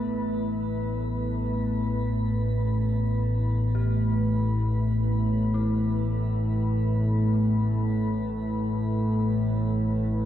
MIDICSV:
0, 0, Header, 1, 5, 480
1, 0, Start_track
1, 0, Tempo, 500000
1, 9843, End_track
2, 0, Start_track
2, 0, Title_t, "Ambient pad"
2, 0, Program_c, 0, 92
2, 0, Note_on_c, 0, 57, 57
2, 0, Note_on_c, 0, 64, 63
2, 0, Note_on_c, 0, 71, 69
2, 0, Note_on_c, 0, 83, 82
2, 9843, Note_off_c, 0, 57, 0
2, 9843, Note_off_c, 0, 64, 0
2, 9843, Note_off_c, 0, 71, 0
2, 9843, Note_off_c, 0, 83, 0
2, 9843, End_track
3, 0, Start_track
3, 0, Title_t, "Singing bowl"
3, 0, Program_c, 1, 14
3, 0, Note_on_c, 1, 59, 61
3, 0, Note_on_c, 1, 71, 61
3, 9843, Note_off_c, 1, 59, 0
3, 9843, Note_off_c, 1, 71, 0
3, 9843, End_track
4, 0, Start_track
4, 0, Title_t, "Synth bell"
4, 0, Program_c, 2, 98
4, 0, Control_c, 2, 64, 127
4, 0, Note_on_c, 2, 64, 56
4, 3599, Note_on_c, 2, 67, 63
4, 5310, Note_off_c, 2, 64, 0
4, 5321, Note_on_c, 2, 64, 58
4, 5555, Note_off_c, 2, 67, 0
4, 9843, Note_off_c, 2, 64, 0
4, 9843, End_track
5, 0, Start_track
5, 0, Title_t, "Synth drone"
5, 0, Program_c, 3, 95
5, 0, Note_on_c, 3, 33, 67
5, 0, Note_on_c, 3, 45, 65
5, 9843, Note_off_c, 3, 33, 0
5, 9843, Note_off_c, 3, 45, 0
5, 9843, End_track
0, 0, End_of_file